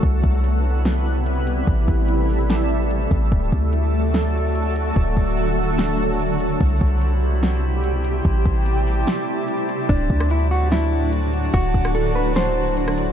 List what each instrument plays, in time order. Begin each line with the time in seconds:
0.03 808-style bass C2, ambient pad C3 G3 B3 E4 B4, kick, closed hi-hat
0.24 808-style bass C2, kick
0.44 closed hi-hat
0.85 snare, closed hi-hat
1.26 closed hi-hat
1.47 closed hi-hat
1.67 808-style bass A1, ambient pad G3 A3 A4, kick, closed hi-hat
1.88 808-style bass A1, kick
2.08 closed hi-hat
2.29 open hi-hat
2.49 snare, closed hi-hat
2.91 closed hi-hat
3.11 808-style bass A1, kick, closed hi-hat
3.32 808-style bass D1, ambient pad D3 F#3 F#4 A4, synth texture F#4 D5 A5, kick, closed hi-hat
3.52 808-style bass D2, kick
3.73 closed hi-hat
4.14 snare, closed hi-hat
4.55 closed hi-hat
4.76 closed hi-hat
4.96 808-style bass D1, kick, closed hi-hat
5.17 808-style bass D1, kick
5.37 closed hi-hat
5.78 snare, closed hi-hat
6.19 closed hi-hat
6.40 closed hi-hat
6.60 808-style bass C2, ambient pad B2 C3 G3 E4 G4, synth texture E4 C5 B5, kick, closed hi-hat
6.81 808-style bass C2, kick
7.01 closed hi-hat
7.43 snare, closed hi-hat
7.84 closed hi-hat
8.04 closed hi-hat
8.25 808-style bass A1, ambient pad A3 E4, synth texture G4 A5, kick, closed hi-hat
8.46 808-style bass A1, kick
8.66 closed hi-hat
8.87 open hi-hat
9.07 snare, closed hi-hat
9.48 closed hi-hat
9.69 closed hi-hat
9.89 808-style bass D1, ambient pad A2 D3 F#3 D4 F#4, clean electric guitar D4, synth texture F#4 D5 A5, kick, closed hi-hat
10.10 808-style bass D2, kick
10.20 cross-stick
10.30 clean electric guitar E4, closed hi-hat
10.51 clean electric guitar F#4
10.71 clean electric guitar E4, snare, closed hi-hat
11.13 closed hi-hat
11.33 closed hi-hat
11.54 808-style bass D1, clean electric guitar F#4, kick, closed hi-hat
11.74 808-style bass D1, kick
11.85 cross-stick
11.95 clean electric guitar A4, closed hi-hat
12.15 clean electric guitar B4
12.36 clean electric guitar C5, snare, closed hi-hat
12.77 closed hi-hat
12.88 cross-stick
12.98 closed hi-hat